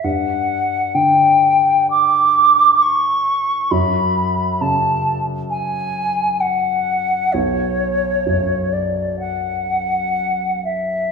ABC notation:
X:1
M:4/4
L:1/8
Q:1/4=65
K:Bm
V:1 name="Flute"
f2 g2 d'2 c'2 | b2 a z ^g2 f2 | c3 d f3 e |]
V:2 name="Grand piano" clef=bass
G,,2 D,6 | F,,2 C,6 | B,,,2 F,,6 |]